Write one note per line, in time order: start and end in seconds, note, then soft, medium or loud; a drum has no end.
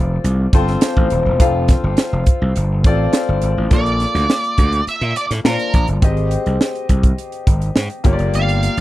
0.00 0.17 F1 medium
0.00 0.54 C4 medium
0.00 0.54 F4 medium
0.00 0.54 A4 medium
0.00 2.87 D5 medium
0.24 0.46 C2 medium
0.24 closed hi-hat medium
0.53 0.75 G1 medium
0.53 1.13 C4 medium
0.53 1.14 F4 medium
0.53 1.14 A4 medium
0.53 1.14 C5 loud
0.53 kick medium
0.53 closed hi-hat medium
0.67 snare soft
0.81 snare loud
0.81 closed hi-hat loud
0.97 1.08 A1 medium
0.97 kick medium
1.10 1.22 D#1 medium
1.10 closed hi-hat medium
1.26 1.40 E1 medium
1.40 1.73 F1 medium
1.40 2.20 C4 medium
1.40 2.20 F4 medium
1.40 2.21 A4 medium
1.40 2.21 F5 medium
1.40 kick loud
1.40 closed hi-hat loud
1.68 kick medium
1.68 snare soft
1.68 closed hi-hat medium
1.84 1.94 G1 medium
1.97 snare loud
1.97 closed hi-hat medium
2.13 2.23 F1 medium
2.26 kick medium
2.26 closed hi-hat medium
2.42 2.52 C2 medium
2.56 2.85 G1 medium
2.56 closed hi-hat medium
2.84 3.06 A1 medium
2.84 3.45 C4 medium
2.84 3.45 F4 medium
2.84 3.45 A4 medium
2.84 3.46 D5 medium
2.84 kick medium
2.84 closed hi-hat medium
3.13 snare loud
3.13 closed hi-hat medium
3.29 3.39 G1 medium
3.42 3.53 G#1 medium
3.42 closed hi-hat medium
3.57 3.68 A1 medium
3.71 4.04 A#1 medium
3.71 5.41 A#3 medium
3.71 5.41 F4 soft
3.71 5.42 A4 soft
3.71 5.42 D5 medium
3.71 4.84 D5 medium
3.71 kick loud
3.71 closed hi-hat medium
3.86 closed hi-hat soft
4.00 snare soft
4.00 closed hi-hat medium
4.15 4.25 D2 medium
4.15 snare soft
4.15 closed hi-hat soft
4.30 snare medium
4.44 closed hi-hat soft
4.58 4.80 D2 medium
4.58 kick medium
4.58 closed hi-hat medium
4.72 closed hi-hat soft
4.87 5.17 E5 medium
4.87 muted slap bass stroke soft
4.87 closed hi-hat medium
5.01 5.12 A#2 medium
5.01 closed hi-hat soft
5.16 5.25 D5 medium
5.16 closed hi-hat medium
5.31 5.41 A2 medium
5.31 snare soft
5.31 closed hi-hat soft
5.44 5.56 A#2 medium
5.44 6.02 A#3 soft
5.44 6.02 F4 soft
5.44 5.86 A#4 medium
5.44 5.51 C5 soft
5.44 6.03 A5 soft
5.44 snare medium
5.52 6.06 D5 soft
5.59 closed hi-hat soft
5.73 5.85 A#1 medium
5.73 kick medium
5.73 closed hi-hat medium
5.88 5.99 G1 medium
5.88 closed hi-hat soft
6.02 6.36 G#1 medium
6.02 8.01 C4 medium
6.02 8.01 G4 medium
6.02 8.02 G#4 medium
6.02 8.02 D#5 medium
6.02 kick loud
6.02 closed hi-hat medium
6.17 closed hi-hat soft
6.31 closed hi-hat medium
6.46 6.57 C2 medium
6.46 closed hi-hat soft
6.61 snare medium
6.75 closed hi-hat soft
6.89 7.11 C2 medium
6.89 kick medium
6.89 closed hi-hat medium
7.03 kick medium
7.03 closed hi-hat soft
7.18 closed hi-hat medium
7.32 closed hi-hat soft
7.47 7.69 G#1 medium
7.47 kick medium
7.47 closed hi-hat medium
7.62 closed hi-hat soft
7.76 7.87 G#2 medium
7.76 snare medium
7.90 closed hi-hat soft
8.04 8.16 G1 medium
8.04 8.80 A#3 medium
8.04 8.80 F4 medium
8.04 8.80 G4 medium
8.04 8.12 C#5 medium
8.04 kick medium
8.04 closed hi-hat medium
8.13 8.80 D5 medium
8.19 8.30 F#1 medium
8.19 closed hi-hat soft
8.34 8.67 G1 medium
8.34 8.80 F5 medium
8.34 closed hi-hat medium
8.49 closed hi-hat soft
8.63 closed hi-hat medium
8.77 8.80 A#1 medium
8.77 closed hi-hat soft